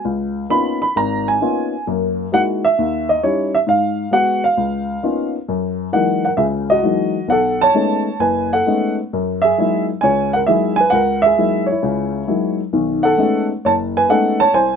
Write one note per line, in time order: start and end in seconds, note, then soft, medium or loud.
0.05 0.44 C#2 medium
0.50 0.82 A#3 medium
0.50 0.82 B3 soft
0.50 0.82 C#4 soft
0.50 0.82 D#4 soft
0.50 0.82 F4 medium
0.50 0.80 B5 loud
0.82 0.94 B5 medium
0.96 1.35 G#1 medium
0.96 1.27 A#5 medium
1.28 1.82 G#5 medium
1.41 1.73 A#3 medium
1.41 1.73 B3 soft
1.41 1.73 C#4 soft
1.41 1.73 D#4 soft
1.41 1.73 F4 medium
1.87 2.26 F#2 medium
1.87 2.26 A#3 medium
2.32 2.63 G#3 medium
2.32 2.64 A#3 soft
2.32 2.63 D#4 soft
2.32 2.64 E4 soft
2.32 2.64 F#4 medium
2.32 2.40 F#5 loud
2.65 3.09 E5 loud
2.79 3.17 D#2 medium
3.09 3.23 D#5 medium
3.23 3.55 G3 medium
3.23 3.55 C#4 soft
3.23 3.55 D#4 soft
3.23 3.55 E4 medium
3.23 3.51 C#5 medium
3.55 3.60 E5 medium
3.67 4.06 G#2 medium
3.67 4.10 F5 medium
4.11 4.44 G#3 medium
4.11 4.44 B3 soft
4.11 4.44 F#4 medium
4.11 4.41 F#5 loud
4.44 5.30 F5 medium
4.57 4.97 C#2 medium
5.03 5.35 A#3 soft
5.03 5.35 B3 soft
5.03 5.35 C#4 soft
5.03 5.35 D#4 soft
5.03 5.35 F4 medium
5.48 5.87 F#2 medium
5.92 6.25 E3 medium
5.92 6.25 F#3 soft
5.92 6.25 G#3 soft
5.92 6.25 A#3 soft
5.92 6.25 D#4 medium
5.92 6.23 A#4 medium
5.92 6.22 F#5 medium
6.25 6.32 A#4 medium
6.25 6.30 F#5 medium
6.37 6.77 C#2 medium
6.37 6.77 C#3 medium
6.37 6.46 G#4 medium
6.37 6.44 E5 medium
6.70 7.26 F#4 medium
6.70 7.25 D#5 medium
6.83 7.15 E3 soft
6.83 7.15 F#3 soft
6.83 7.16 G#3 soft
6.83 7.16 A#3 soft
6.83 7.16 D#4 medium
7.28 7.68 B1 medium
7.28 7.61 F#5 medium
7.32 7.59 A4 medium
7.61 8.17 C#5 medium
7.61 8.16 A5 loud
7.74 8.06 G#3 medium
7.74 8.07 A3 soft
7.74 8.07 B3 soft
7.74 8.07 C#4 soft
7.74 8.07 D#4 medium
8.19 8.59 F#1 medium
8.19 8.49 B4 medium
8.19 8.52 G#5 medium
8.53 8.95 A4 medium
8.53 8.94 F#5 medium
8.66 8.98 G#3 medium
8.66 8.98 A3 medium
8.66 8.98 B3 soft
8.66 8.98 C#4 soft
8.66 8.98 D#4 medium
9.13 9.51 F#2 medium
9.42 9.85 G#4 medium
9.42 9.83 E5 loud
9.58 9.89 F#3 medium
9.58 9.89 G#3 soft
9.58 9.89 A#3 soft
9.58 9.89 D#4 soft
9.58 9.90 E4 medium
10.01 10.41 C#2 medium
10.01 10.41 C#3 medium
10.01 10.31 C#5 medium
10.01 10.30 G#5 medium
10.33 10.41 A#4 medium
10.33 10.38 F#5 medium
10.47 10.79 F#3 medium
10.47 10.79 G#3 soft
10.47 10.79 A#3 soft
10.47 10.79 D#4 soft
10.47 10.80 E4 medium
10.47 10.77 G#4 medium
10.47 10.78 E5 medium
10.76 10.91 G#5 loud
10.80 10.92 B4 medium
10.90 11.31 C#2 medium
10.90 11.19 F#5 medium
10.95 11.22 A#4 medium
11.22 11.64 E5 loud
11.26 11.66 G#4 medium
11.38 11.70 F#3 soft
11.38 11.70 G#3 soft
11.38 11.70 A#3 soft
11.38 11.70 D#4 soft
11.38 11.70 E4 medium
11.66 12.54 C#5 medium
11.71 12.27 E4 medium
11.83 12.22 C#2 medium
11.83 12.22 C#3 medium
12.27 12.60 F#3 medium
12.27 12.60 G#3 soft
12.27 12.60 A#3 soft
12.27 12.60 D#4 soft
12.27 12.60 E4 medium
12.73 13.12 B1 medium
12.73 13.12 D#3 medium
13.03 13.46 A4 medium
13.03 13.45 F#5 medium
13.18 13.50 G#3 medium
13.18 13.50 A3 soft
13.18 13.50 B3 soft
13.18 13.51 C#4 soft
13.18 13.50 D#4 medium
13.65 14.03 F#1 medium
13.65 13.72 C#5 medium
13.65 13.73 A5 medium
13.97 14.09 B4 medium
13.97 14.09 G#5 medium
14.09 14.41 G#3 medium
14.09 14.41 A3 soft
14.09 14.41 B3 soft
14.09 14.41 C#4 soft
14.09 14.41 D#4 medium
14.09 14.38 A4 medium
14.09 14.38 F#5 medium
14.40 14.54 C#5 medium
14.40 14.54 A5 loud
14.54 14.76 C2 medium
14.54 14.76 C5 medium
14.54 14.76 G#5 medium